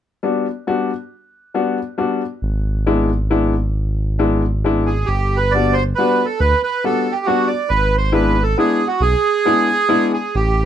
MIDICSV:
0, 0, Header, 1, 4, 480
1, 0, Start_track
1, 0, Tempo, 441826
1, 1212, Time_signature, 3, 2, 24, 8
1, 6006, Tempo, 433839
1, 9366, Tempo, 443459
1, 11624, End_track
2, 0, Start_track
2, 0, Title_t, "Bandoneon"
2, 0, Program_c, 0, 23
2, 5281, Note_on_c, 0, 68, 47
2, 5494, Note_on_c, 0, 67, 65
2, 5532, Note_off_c, 0, 68, 0
2, 5832, Note_on_c, 0, 71, 68
2, 5842, Note_off_c, 0, 67, 0
2, 5988, Note_on_c, 0, 74, 72
2, 6004, Note_off_c, 0, 71, 0
2, 6231, Note_on_c, 0, 72, 73
2, 6249, Note_off_c, 0, 74, 0
2, 6344, Note_off_c, 0, 72, 0
2, 6474, Note_on_c, 0, 71, 63
2, 6805, Note_on_c, 0, 69, 57
2, 6813, Note_off_c, 0, 71, 0
2, 6972, Note_off_c, 0, 69, 0
2, 6972, Note_on_c, 0, 71, 81
2, 7210, Note_off_c, 0, 71, 0
2, 7227, Note_on_c, 0, 71, 71
2, 7465, Note_off_c, 0, 71, 0
2, 7470, Note_on_c, 0, 69, 69
2, 7765, Note_on_c, 0, 67, 62
2, 7789, Note_off_c, 0, 69, 0
2, 7919, Note_on_c, 0, 66, 74
2, 7931, Note_off_c, 0, 67, 0
2, 8156, Note_on_c, 0, 74, 58
2, 8169, Note_off_c, 0, 66, 0
2, 8398, Note_on_c, 0, 71, 79
2, 8407, Note_off_c, 0, 74, 0
2, 8698, Note_off_c, 0, 71, 0
2, 8714, Note_on_c, 0, 72, 69
2, 8884, Note_off_c, 0, 72, 0
2, 8888, Note_on_c, 0, 71, 66
2, 9215, Note_on_c, 0, 69, 62
2, 9218, Note_off_c, 0, 71, 0
2, 9377, Note_off_c, 0, 69, 0
2, 9388, Note_on_c, 0, 68, 70
2, 9701, Note_on_c, 0, 66, 60
2, 9705, Note_off_c, 0, 68, 0
2, 9854, Note_on_c, 0, 68, 88
2, 9857, Note_off_c, 0, 66, 0
2, 11048, Note_off_c, 0, 68, 0
2, 11064, Note_on_c, 0, 68, 58
2, 11303, Note_on_c, 0, 67, 64
2, 11304, Note_off_c, 0, 68, 0
2, 11624, Note_off_c, 0, 67, 0
2, 11624, End_track
3, 0, Start_track
3, 0, Title_t, "Upright piano"
3, 0, Program_c, 1, 0
3, 249, Note_on_c, 1, 55, 56
3, 251, Note_on_c, 1, 62, 46
3, 255, Note_on_c, 1, 59, 45
3, 261, Note_on_c, 1, 66, 51
3, 490, Note_off_c, 1, 55, 0
3, 491, Note_off_c, 1, 62, 0
3, 493, Note_off_c, 1, 59, 0
3, 496, Note_off_c, 1, 66, 0
3, 730, Note_on_c, 1, 59, 44
3, 734, Note_on_c, 1, 55, 56
3, 735, Note_on_c, 1, 66, 68
3, 739, Note_on_c, 1, 62, 48
3, 972, Note_off_c, 1, 59, 0
3, 974, Note_off_c, 1, 55, 0
3, 975, Note_off_c, 1, 66, 0
3, 977, Note_off_c, 1, 62, 0
3, 1677, Note_on_c, 1, 55, 54
3, 1681, Note_on_c, 1, 59, 52
3, 1685, Note_on_c, 1, 66, 60
3, 1687, Note_on_c, 1, 62, 47
3, 1923, Note_off_c, 1, 55, 0
3, 1925, Note_off_c, 1, 59, 0
3, 1927, Note_off_c, 1, 66, 0
3, 1928, Note_off_c, 1, 62, 0
3, 2148, Note_on_c, 1, 55, 60
3, 2152, Note_on_c, 1, 62, 51
3, 2154, Note_on_c, 1, 59, 45
3, 2156, Note_on_c, 1, 66, 64
3, 2396, Note_off_c, 1, 55, 0
3, 2397, Note_off_c, 1, 62, 0
3, 2398, Note_off_c, 1, 59, 0
3, 2400, Note_off_c, 1, 66, 0
3, 3111, Note_on_c, 1, 62, 51
3, 3113, Note_on_c, 1, 56, 61
3, 3116, Note_on_c, 1, 64, 64
3, 3120, Note_on_c, 1, 59, 48
3, 3351, Note_off_c, 1, 62, 0
3, 3352, Note_off_c, 1, 56, 0
3, 3354, Note_off_c, 1, 64, 0
3, 3356, Note_off_c, 1, 59, 0
3, 3589, Note_on_c, 1, 56, 52
3, 3593, Note_on_c, 1, 64, 68
3, 3596, Note_on_c, 1, 59, 52
3, 3599, Note_on_c, 1, 62, 55
3, 3830, Note_off_c, 1, 56, 0
3, 3832, Note_off_c, 1, 64, 0
3, 3834, Note_off_c, 1, 59, 0
3, 3835, Note_off_c, 1, 62, 0
3, 4550, Note_on_c, 1, 62, 57
3, 4555, Note_on_c, 1, 56, 53
3, 4556, Note_on_c, 1, 59, 46
3, 4558, Note_on_c, 1, 64, 62
3, 4793, Note_off_c, 1, 62, 0
3, 4795, Note_off_c, 1, 56, 0
3, 4796, Note_off_c, 1, 59, 0
3, 4797, Note_off_c, 1, 64, 0
3, 5045, Note_on_c, 1, 56, 58
3, 5048, Note_on_c, 1, 62, 52
3, 5053, Note_on_c, 1, 59, 46
3, 5061, Note_on_c, 1, 64, 69
3, 5288, Note_off_c, 1, 56, 0
3, 5289, Note_off_c, 1, 62, 0
3, 5292, Note_off_c, 1, 59, 0
3, 5296, Note_off_c, 1, 64, 0
3, 6025, Note_on_c, 1, 55, 58
3, 6026, Note_on_c, 1, 59, 44
3, 6027, Note_on_c, 1, 62, 51
3, 6037, Note_on_c, 1, 66, 56
3, 6259, Note_off_c, 1, 55, 0
3, 6260, Note_off_c, 1, 59, 0
3, 6261, Note_off_c, 1, 62, 0
3, 6266, Note_off_c, 1, 66, 0
3, 6509, Note_on_c, 1, 55, 51
3, 6511, Note_on_c, 1, 59, 52
3, 6517, Note_on_c, 1, 66, 60
3, 6519, Note_on_c, 1, 62, 51
3, 6741, Note_off_c, 1, 55, 0
3, 6742, Note_off_c, 1, 59, 0
3, 6745, Note_off_c, 1, 66, 0
3, 6746, Note_off_c, 1, 62, 0
3, 7459, Note_on_c, 1, 55, 55
3, 7460, Note_on_c, 1, 62, 50
3, 7468, Note_on_c, 1, 59, 54
3, 7468, Note_on_c, 1, 66, 62
3, 7695, Note_off_c, 1, 55, 0
3, 7695, Note_off_c, 1, 62, 0
3, 7699, Note_off_c, 1, 59, 0
3, 7699, Note_off_c, 1, 66, 0
3, 7938, Note_on_c, 1, 55, 58
3, 7939, Note_on_c, 1, 59, 52
3, 7941, Note_on_c, 1, 62, 55
3, 7944, Note_on_c, 1, 66, 67
3, 8171, Note_off_c, 1, 55, 0
3, 8172, Note_off_c, 1, 59, 0
3, 8173, Note_off_c, 1, 62, 0
3, 8174, Note_off_c, 1, 66, 0
3, 8878, Note_on_c, 1, 64, 64
3, 8882, Note_on_c, 1, 59, 47
3, 8884, Note_on_c, 1, 56, 51
3, 8888, Note_on_c, 1, 62, 55
3, 9123, Note_off_c, 1, 64, 0
3, 9125, Note_off_c, 1, 59, 0
3, 9126, Note_off_c, 1, 56, 0
3, 9128, Note_off_c, 1, 62, 0
3, 9379, Note_on_c, 1, 59, 56
3, 9381, Note_on_c, 1, 56, 53
3, 9385, Note_on_c, 1, 64, 56
3, 9387, Note_on_c, 1, 62, 44
3, 9612, Note_off_c, 1, 59, 0
3, 9613, Note_off_c, 1, 56, 0
3, 9615, Note_off_c, 1, 64, 0
3, 9616, Note_off_c, 1, 62, 0
3, 10327, Note_on_c, 1, 56, 50
3, 10331, Note_on_c, 1, 59, 55
3, 10333, Note_on_c, 1, 62, 45
3, 10339, Note_on_c, 1, 64, 61
3, 10566, Note_off_c, 1, 56, 0
3, 10568, Note_off_c, 1, 59, 0
3, 10569, Note_off_c, 1, 62, 0
3, 10572, Note_off_c, 1, 64, 0
3, 10796, Note_on_c, 1, 56, 66
3, 10798, Note_on_c, 1, 59, 55
3, 10804, Note_on_c, 1, 64, 66
3, 10805, Note_on_c, 1, 62, 61
3, 11043, Note_off_c, 1, 56, 0
3, 11044, Note_off_c, 1, 59, 0
3, 11047, Note_off_c, 1, 62, 0
3, 11047, Note_off_c, 1, 64, 0
3, 11624, End_track
4, 0, Start_track
4, 0, Title_t, "Analog synth bass"
4, 0, Program_c, 2, 38
4, 2632, Note_on_c, 2, 32, 72
4, 5478, Note_off_c, 2, 32, 0
4, 5523, Note_on_c, 2, 31, 95
4, 6459, Note_off_c, 2, 31, 0
4, 6974, Note_on_c, 2, 38, 94
4, 7128, Note_off_c, 2, 38, 0
4, 8411, Note_on_c, 2, 32, 84
4, 9352, Note_off_c, 2, 32, 0
4, 9843, Note_on_c, 2, 35, 103
4, 10000, Note_off_c, 2, 35, 0
4, 11300, Note_on_c, 2, 33, 93
4, 11624, Note_off_c, 2, 33, 0
4, 11624, End_track
0, 0, End_of_file